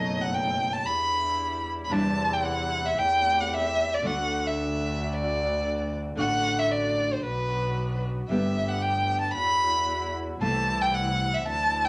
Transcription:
0.00 0.81 F#1 medium
0.00 0.84 B2 medium
0.00 0.85 F#3 medium
0.00 0.81 A3 medium
0.00 0.85 A3 medium
0.00 0.81 B3 medium
0.00 0.81 D#4 medium
0.00 0.85 D#4 medium
0.00 0.23 D#5 medium
0.21 0.36 F#5 medium
0.34 0.75 G5 medium
0.73 0.87 A5 medium
0.85 1.86 E2 medium
0.85 1.86 G3 medium
0.85 1.86 D4 medium
0.85 1.86 E4 medium
0.85 1.65 B5 medium
1.85 1.94 B5 medium
1.89 2.91 E2 medium
1.89 2.95 C3 medium
1.89 2.95 E3 medium
1.89 2.96 G3 medium
1.89 2.91 C4 medium
1.89 2.91 D4 medium
1.89 2.96 D4 medium
1.89 2.91 E4 medium
1.89 2.96 E4 medium
1.89 2.35 A5 loud
2.33 2.47 G5 medium
2.45 2.88 F#5 medium
2.86 3.00 E5 medium
2.97 3.98 E2 medium
2.97 3.98 A3 medium
2.97 3.98 C4 medium
2.97 3.98 G4 medium
2.97 3.42 G5 loud
3.40 3.55 F#5 medium
3.54 3.95 E5 medium
3.94 4.08 D5 medium
4.02 6.07 D2 medium
4.02 6.14 D3 medium
4.02 6.07 A3 medium
4.02 6.15 A3 medium
4.02 6.07 D4 medium
4.02 6.17 D4 medium
4.02 6.07 F#4 medium
4.02 6.17 F#4 medium
4.07 4.49 F#5 medium
4.47 5.16 E5 medium
5.14 5.93 D5 medium
6.15 7.19 A1 medium
6.15 7.22 D3 medium
6.15 7.22 A3 medium
6.15 7.19 A3 medium
6.15 7.23 D4 medium
6.15 7.19 D4 medium
6.15 7.19 F#4 medium
6.15 7.23 F#4 medium
6.15 6.60 F#5 medium
6.59 6.73 E5 medium
6.72 7.14 D5 medium
7.13 7.25 C5 medium
7.23 8.25 B1 medium
7.23 8.25 B3 medium
7.23 8.25 D4 medium
7.23 8.25 F#4 medium
7.23 8.00 B4 medium
8.29 9.30 G1 medium
8.29 9.34 D3 medium
8.29 9.35 G3 medium
8.29 9.30 A3 medium
8.29 9.30 B3 medium
8.29 9.36 B3 medium
8.29 9.31 G4 medium
8.29 9.36 G4 medium
8.29 8.70 E5 medium
8.69 8.83 F#5 medium
8.82 9.20 G5 medium
9.21 9.33 A5 medium
9.33 10.36 E2 medium
9.33 10.36 G3 medium
9.33 10.36 E4 medium
9.33 10.36 F#4 medium
9.33 10.10 B5 medium
10.40 11.41 C2 medium
10.40 11.44 C3 medium
10.40 11.89 E3 medium
10.40 11.40 A3 medium
10.40 11.45 A3 medium
10.40 11.41 C4 medium
10.40 11.46 C4 medium
10.40 11.41 E4 medium
10.40 11.89 E4 medium
10.40 10.83 A5 medium
10.82 10.96 G5 medium
10.95 11.36 F#5 medium
11.34 11.47 E5 medium
11.46 11.89 D2 medium
11.46 11.89 F#3 medium
11.46 11.89 D4 medium
11.46 11.89 E4 medium
11.46 11.86 A5 medium
11.85 11.89 G5 medium

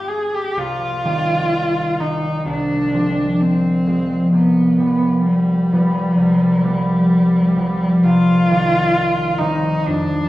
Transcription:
0.00 0.44 G2 soft
0.00 0.45 D3 soft
0.00 0.46 G3 soft
0.00 0.47 D4 soft
0.08 0.36 G#4 soft
0.34 0.59 G4 soft
0.57 2.45 C2 soft
0.57 2.02 F4 medium
1.05 1.98 D#3 soft
1.05 1.98 G3 soft
1.05 1.99 C4 soft
1.99 2.50 D#3 soft
1.99 2.50 G3 soft
1.99 2.93 C4 soft
1.99 2.46 D#4 soft
2.46 4.31 C2 soft
2.46 3.43 D4 soft
2.94 3.85 F3 soft
2.94 3.86 G#3 soft
2.94 3.86 C4 soft
3.41 4.33 C4 soft
3.87 4.78 F3 soft
3.87 4.37 G#3 soft
3.87 4.37 C4 soft
4.32 6.16 C2 soft
4.32 5.25 B3 soft
4.79 5.71 F3 soft
4.79 5.72 G3 soft
4.79 5.72 B3 soft
5.26 8.05 G3 medium
5.73 6.62 F3 soft
5.73 6.62 G3 soft
5.73 6.63 B3 soft
6.17 8.03 C2 soft
6.63 7.55 F3 soft
6.63 7.56 G3 soft
6.63 7.56 B3 soft
7.56 8.08 F3 soft
7.56 8.49 G3 soft
7.56 8.08 B3 soft
8.04 9.90 C2 soft
8.04 9.40 F4 medium
8.50 9.39 D#3 soft
8.50 9.40 G3 soft
8.50 9.40 C4 soft
9.39 9.90 D#3 soft
9.39 9.91 G3 soft
9.39 9.91 C4 soft
9.39 9.88 D#4 soft
9.86 10.29 F2 soft
9.86 10.29 D4 medium

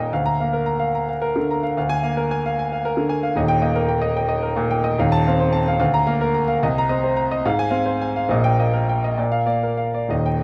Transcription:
0.00 0.13 D#1 medium
0.00 0.12 D#2 medium
0.00 0.12 A#2 medium
0.00 0.12 A#3 medium
0.00 0.13 A#4 medium
0.00 0.13 D#5 medium
0.00 0.13 G5 medium
0.13 1.73 D2 medium
0.13 0.34 F5 medium
0.26 0.48 A#5 medium
0.40 0.84 A#3 medium
0.40 0.62 F5 medium
0.53 0.75 A#4 medium
0.66 0.88 A#5 medium
0.79 1.02 F5 medium
0.95 1.17 A#5 medium
1.09 1.30 F5 medium
1.22 1.44 A#4 medium
1.36 1.57 D3 medium
1.51 1.72 A#5 medium
1.63 1.76 F5 medium
1.77 3.34 D2 medium
1.77 1.99 F5 medium
1.89 2.11 G#5 loud
2.03 2.47 A#3 medium
2.03 2.25 F5 medium
2.17 2.39 A#4 medium
2.31 2.52 G#5 medium
2.46 2.66 F5 medium
2.59 2.79 G#5 medium
2.72 2.92 F5 medium
2.85 3.06 A#4 medium
2.97 3.18 D3 medium
3.09 3.31 G#5 medium
3.23 3.37 F5 medium
3.36 4.94 D#1 medium
3.36 4.94 D#2 medium
3.36 3.58 D#5 medium
3.48 3.71 G5 loud
3.62 4.05 A#3 medium
3.62 3.84 D#5 medium
3.76 3.97 A#4 medium
3.88 4.10 G5 medium
4.02 4.24 D#5 medium
4.17 4.38 G5 medium
4.29 4.51 D#5 medium
4.43 4.65 A#4 medium
4.56 4.79 A#2 medium
4.71 4.93 G5 medium
4.84 4.98 D#5 medium
4.98 5.77 D#1 medium
4.98 5.78 D#2 medium
4.98 5.21 F5 medium
5.12 5.34 A5 loud
5.27 5.70 C4 medium
5.27 5.48 F5 medium
5.40 5.61 C5 medium
5.52 5.74 A5 medium
5.68 5.79 F5 medium
5.80 6.59 D2 loud
5.80 6.01 F5 medium
5.94 6.15 A#5 loud
6.07 6.51 A#3 medium
6.07 6.28 F5 medium
6.21 6.43 A#4 medium
6.34 6.56 A#5 medium
6.48 6.62 F5 medium
6.63 7.43 C2 medium
6.63 6.85 D#5 medium
6.78 6.99 A#5 loud
6.89 7.35 C4 medium
6.89 7.12 D#5 medium
7.04 7.26 C5 medium
7.16 7.39 A#5 medium
7.31 7.45 D#5 medium
7.45 8.27 G#2 loud
7.45 7.67 F5 medium
7.59 7.81 G#5 loud
7.71 8.17 C4 medium
7.71 7.94 F5 medium
7.86 8.09 C5 medium
8.01 8.24 G#5 medium
8.16 8.30 F5 medium
8.29 9.15 A#1 medium
8.29 9.16 A#2 medium
8.29 8.53 D#5 medium
8.44 8.67 G5 loud
8.59 9.06 A#3 medium
8.59 8.83 D#5 medium
8.73 8.97 A#4 medium
8.89 9.12 G5 medium
9.04 9.18 D#5 medium
9.17 10.08 A#2 medium
9.17 9.42 D5 medium
9.32 9.57 F5 medium
9.46 9.97 A#3 medium
9.46 9.72 D5 medium
9.63 9.89 A#4 medium
9.77 10.04 F5 medium
9.94 10.11 D5 medium
10.09 10.43 D#1 medium
10.09 10.43 D#2 medium
10.09 10.37 D#5 medium
10.26 10.43 G5 medium

